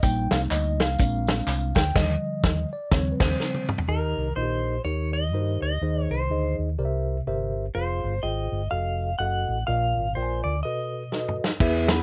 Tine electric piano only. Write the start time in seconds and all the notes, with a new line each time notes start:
0.03 G3 A#3 D#4 G5
0.31 F5
0.51 D#5
0.80 F5
0.99 G#3 C4 D4
1.75 G5
1.94 D3 F3 G3 D#5
2.73 D5
2.92 C#3 F3 G3 C4 C#5
3.12 B4
3.21 C5
3.88 D#3 D#4 G4 A#4 D#5
4.37 D#4 F4 A#4 D#5
4.42 G4
4.85 D#3 D#4 G4 A#4 C#5
5.34 D#4 F#4 A#4 C5
5.40 G4
5.82 D#3 D#4 G#4 C5 D#5
6.31 D#4 G#4 C5 D#5
6.79 C3 G4 A#4 C5 D5
6.85 E5
7.27 G4 A#4 C5 E5
7.75 F4 G#4 C5 F5
8.23 F4 G#4 C5 G5
8.71 F#4 A4 D#5 F5
9.20 F#4 A4 D#5 F5
9.26 F#5
9.68 A#2 F4 A#4 D5 D#5
9.74 F5
10.17 F4 A#4 D5 G5
10.23 G#5
10.65 B2 F#4 A4 B4 D#5
11.12 F#4 A4 B4 D#5
11.60 E3 B3 E4 G#4 B4 E5
11.90 F#5 B5